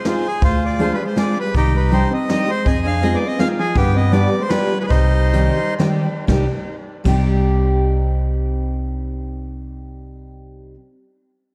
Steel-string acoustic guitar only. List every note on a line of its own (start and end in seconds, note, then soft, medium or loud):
0.05 0.25 G#3 medium
0.05 0.25 C4 medium
0.05 0.25 D#4 medium
0.05 0.25 F4 medium
0.05 0.25 G#4 medium
0.79 0.99 G#3 medium
0.79 0.99 C4 medium
0.79 0.99 D4 medium
0.79 0.99 F4 medium
0.79 0.99 G#4 medium
1.16 1.37 G#3 medium
1.16 1.37 C4 medium
1.16 1.37 D4 medium
1.16 1.37 F4 medium
1.16 1.37 G#4 medium
1.91 2.12 G3 medium
1.91 2.12 C4 medium
1.91 2.12 D4 medium
1.91 2.12 D#4 medium
1.91 2.12 G4 medium
2.29 2.49 G3 medium
2.29 2.49 C4 medium
2.29 2.49 D4 medium
2.29 2.49 D#4 medium
2.29 2.49 G4 medium
3.03 3.23 G#3 medium
3.03 3.23 C4 medium
3.03 3.23 D#4 medium
3.03 3.23 F4 medium
3.03 3.23 G#4 medium
3.39 3.59 G#3 medium
3.39 3.59 C4 medium
3.39 3.59 D#4 medium
3.39 3.59 F4 medium
3.39 3.59 G#4 medium
4.12 4.33 G3 medium
4.12 4.33 B3 medium
4.12 4.33 D4 medium
4.12 4.33 F4 medium
4.12 4.33 G4 medium
4.50 4.72 G3 medium
4.50 4.72 B3 medium
4.50 4.72 D4 medium
4.50 4.72 F4 medium
4.50 4.72 G4 medium
5.33 5.57 D#3 medium
5.33 5.57 G3 medium
5.33 5.57 C4 medium
5.33 5.57 D#4 medium
5.33 5.57 G4 medium
5.79 6.05 D#3 medium
5.79 6.06 G3 medium
5.79 6.06 C4 medium
5.79 6.06 D#4 medium
5.79 6.06 G4 loud
6.27 6.43 G3 medium
6.27 6.44 C4 medium
6.27 6.45 D#4 medium
6.27 6.45 G4 loud
7.04 10.74 G3 medium
7.04 10.74 C4 medium
7.04 10.75 D#4 medium
7.08 10.76 G4 loud